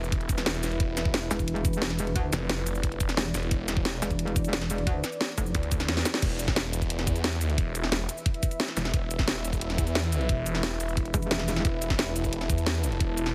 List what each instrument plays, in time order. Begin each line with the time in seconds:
Already playing: detuned saw bass E1, ambient pad E4 B4 E5
0.04 shaker
0.12 kick, closed hi-hat
0.21 closed hi-hat
0.29 kick, closed hi-hat, shaker
0.38 snare, closed hi-hat, shaker
0.46 detuned saw bass E1, snare, closed hi-hat
0.55 closed hi-hat
0.63 snare, closed hi-hat, shaker
0.72 closed hi-hat
0.80 detuned saw bass E1, ambient pad D5, kick, closed hi-hat
0.97 snare, closed hi-hat, shaker
1.05 kick
1.14 snare, closed hi-hat
1.31 wobble bass E1, snare, closed hi-hat, shaker
1.39 kick, shaker
1.48 closed hi-hat
1.56 closed hi-hat
1.65 kick, closed hi-hat, shaker
1.73 closed hi-hat, shaker
1.82 snare, closed hi-hat
1.90 snare, closed hi-hat
1.99 closed hi-hat, shaker
2.07 closed hi-hat
2.16 wobble bass D2, kick, closed hi-hat
2.33 detuned saw bass F1, snare, closed hi-hat, shaker
2.50 snare, closed hi-hat
2.66 closed hi-hat, shaker
2.75 shaker
2.83 kick, closed hi-hat
2.92 closed hi-hat
3.00 kick, closed hi-hat, shaker
3.09 snare, closed hi-hat, shaker
3.17 wobble bass E1, snare, closed hi-hat
3.26 closed hi-hat
3.34 detuned saw bass E1, snare, closed hi-hat, shaker
3.43 closed hi-hat
3.51 detuned saw bass E1, kick, closed hi-hat
3.68 snare, closed hi-hat, shaker
3.77 kick
3.85 snare, closed hi-hat
4.02 wobble bass E1, snare, closed hi-hat, shaker
4.11 kick, shaker
4.19 closed hi-hat
4.28 closed hi-hat
4.36 kick, closed hi-hat, shaker
4.45 closed hi-hat, shaker
4.53 snare, closed hi-hat
4.61 snare, closed hi-hat
4.70 closed hi-hat, shaker
4.78 closed hi-hat
4.87 wobble bass D2, kick, closed hi-hat
5.04 snare, closed hi-hat, shaker
5.12 shaker
5.21 snare, closed hi-hat
5.38 wobble bass F1, kick, closed hi-hat, shaker
5.46 shaker
5.55 detuned saw bass D2, kick, closed hi-hat
5.63 closed hi-hat
5.72 kick, closed hi-hat, shaker
5.80 snare, closed hi-hat, shaker
5.88 detuned saw bass E2, snare, closed hi-hat
5.97 snare, closed hi-hat
6.05 snare, closed hi-hat, shaker
6.14 snare, closed hi-hat
6.22 detuned saw bass E1, ambient pad E4 B4 E5, kick, closed hi-hat, crash
6.39 closed hi-hat, shaker
6.48 kick, snare
6.56 snare, closed hi-hat
6.73 detuned saw bass E1, closed hi-hat, shaker
6.82 kick, shaker
6.90 closed hi-hat
6.99 snare, closed hi-hat
7.07 detuned saw bass E2, kick, closed hi-hat, shaker
7.16 closed hi-hat, shaker
7.24 snare, closed hi-hat
7.33 closed hi-hat
7.41 closed hi-hat, shaker
7.50 closed hi-hat
7.58 detuned saw bass E1, kick, closed hi-hat
7.75 closed hi-hat, shaker
7.84 snare
7.92 snare, closed hi-hat
8.09 closed hi-hat, shaker
8.17 shaker
8.26 kick, closed hi-hat
8.34 closed hi-hat
8.43 kick, closed hi-hat, shaker
8.51 closed hi-hat, shaker
8.60 snare, closed hi-hat
8.68 snare, closed hi-hat
8.77 detuned saw bass E1, snare, closed hi-hat, shaker
8.85 snare, closed hi-hat
8.94 detuned saw bass E1, kick, closed hi-hat
9.11 closed hi-hat, shaker
9.19 kick, snare
9.28 snare, closed hi-hat
9.44 detuned saw bass E1, closed hi-hat, shaker
9.53 kick, shaker
9.61 closed hi-hat
9.70 snare, closed hi-hat
9.78 detuned saw bass E2, kick, closed hi-hat, shaker
9.87 closed hi-hat, shaker
9.95 snare, closed hi-hat
10.04 closed hi-hat
10.12 closed hi-hat, shaker
10.21 closed hi-hat
10.29 detuned saw bass E1, kick, closed hi-hat
10.46 closed hi-hat, shaker
10.55 snare
10.63 snare, closed hi-hat
10.80 detuned saw bass E1, closed hi-hat, shaker
10.89 shaker
10.97 kick, closed hi-hat
11.06 closed hi-hat
11.14 wobble bass E1, kick, closed hi-hat, shaker
11.22 closed hi-hat, shaker
11.31 snare, closed hi-hat
11.39 snare, closed hi-hat
11.48 snare, closed hi-hat, shaker
11.56 snare, closed hi-hat
11.65 detuned saw bass E1, ambient pad A5, kick, closed hi-hat
11.82 closed hi-hat, shaker
11.90 kick, snare
11.99 snare, closed hi-hat
12.16 detuned saw bass E1, closed hi-hat, shaker
12.24 kick, shaker
12.33 closed hi-hat
12.41 snare, closed hi-hat
12.50 detuned saw bass E2, kick, closed hi-hat, shaker
12.58 closed hi-hat, shaker
12.66 snare, closed hi-hat
12.75 closed hi-hat
12.84 closed hi-hat, shaker
12.92 closed hi-hat
13.00 detuned saw bass E1, kick, closed hi-hat
13.17 closed hi-hat, shaker
13.26 snare